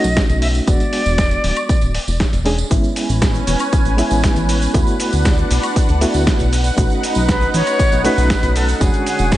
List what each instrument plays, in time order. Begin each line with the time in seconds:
Already playing: reed electric piano A3 C#4 D#4 F#4, flute D#5
0.04 analog synth bass B1, tambourine
0.17 kick, snare, closed hi-hat, tambourine
0.29 analog synth bass B1, closed hi-hat, tambourine
0.41 flute E5, open hi-hat
0.55 tambourine
0.66 analog synth bass E1, reed electric piano G#3 B3 D4 F#4, flute D5, kick, closed hi-hat, tambourine
0.80 closed hi-hat, tambourine
0.93 open hi-hat
1.06 analog synth bass E1, tambourine
1.18 kick, snare, closed hi-hat, tambourine
1.31 closed hi-hat, tambourine
1.44 analog synth bass D1, open hi-hat
1.56 closed hi-hat, tambourine, high woodblock
1.69 kick, closed hi-hat, tambourine
1.81 analog synth bass D1, closed hi-hat, tambourine
1.95 open hi-hat
2.08 analog synth bass E1, tambourine
2.20 kick, snare, closed hi-hat, tambourine
2.33 analog synth bass E1, closed hi-hat, tambourine
2.45 reed electric piano G#3 C#4 D4 G#4, open hi-hat
2.59 tambourine
2.70 analog synth bass A1, reed electric piano G#3 B3 C#4 E4, analog synth pad C#4 B4 G#5, kick, closed hi-hat, tambourine, cabasa
2.84 tambourine, cabasa
2.96 open hi-hat, cabasa
3.09 analog synth bass A1, tambourine, cabasa
3.22 kick, snare, closed hi-hat, tambourine, cabasa
3.34 tambourine, cabasa
3.47 analog synth bass E1, open hi-hat, cabasa
3.59 tambourine, cabasa, high woodblock
3.72 analog synth bass A1, kick, closed hi-hat, tambourine, cabasa
3.85 analog synth bass A1, closed hi-hat, tambourine, cabasa
3.97 reed electric piano G#3 B3 C#4 E4, open hi-hat, cabasa
4.11 analog synth bass A1, tambourine, cabasa
4.24 kick, snare, closed hi-hat, tambourine, cabasa
4.36 analog synth bass A1, closed hi-hat, tambourine, cabasa
4.49 open hi-hat, cabasa
4.62 tambourine, cabasa
4.74 analog synth bass D2, reed electric piano A3 B3 E4 F#4, analog synth pad D4 F#5, kick, closed hi-hat, tambourine, cabasa
4.87 tambourine, cabasa
5.00 open hi-hat, cabasa
5.13 analog synth bass D2, tambourine, cabasa
5.25 kick, snare, closed hi-hat, tambourine, cabasa
5.38 tambourine, cabasa
5.51 analog synth bass B1, open hi-hat, cabasa
5.63 closed hi-hat, tambourine, cabasa, high woodblock
5.76 kick, closed hi-hat, tambourine, cabasa
5.88 analog synth bass D2, closed hi-hat, tambourine, cabasa
6.01 reed electric piano A3 B3 E4 F#4, open hi-hat, cabasa
6.14 analog synth bass D2, tambourine, cabasa
6.27 kick, snare, closed hi-hat, tambourine, cabasa
6.39 analog synth bass B1, closed hi-hat, tambourine, cabasa
6.52 analog synth pad D#4 B4, open hi-hat, cabasa
6.64 tambourine, cabasa
6.76 analog synth bass B1, reed electric piano A3 C#4 D#4 F#4, kick, closed hi-hat, tambourine, cabasa
6.90 tambourine, cabasa
7.03 open hi-hat, cabasa
7.15 analog synth bass B1, tambourine, cabasa
7.29 flute B4, kick, snare, closed hi-hat, tambourine, cabasa
7.41 tambourine, cabasa
7.54 analog synth bass A1, flute C#5, open hi-hat, cabasa
7.67 closed hi-hat, tambourine, cabasa, high woodblock
7.79 analog synth bass B1, kick, closed hi-hat, tambourine, cabasa
7.92 analog synth bass B1, closed hi-hat, tambourine, cabasa
8.04 reed electric piano A3 C#4 D#4 F#4, flute B4, open hi-hat, cabasa
8.18 analog synth bass B1, tambourine, cabasa
8.30 kick, snare, closed hi-hat, tambourine, cabasa
8.43 analog synth bass B1, closed hi-hat, tambourine, cabasa
8.56 flute A4, open hi-hat, cabasa
8.68 tambourine, cabasa
8.80 analog synth bass E1, analog synth pad D3 G#4 C#5, reed electric piano G#3 C#4 D4 F#4, flute G#4, kick, closed hi-hat, tambourine, cabasa
8.94 closed hi-hat, tambourine, cabasa
9.06 open hi-hat, cabasa
9.19 analog synth bass E1, tambourine, cabasa
9.32 kick, snare, closed hi-hat, tambourine, cabasa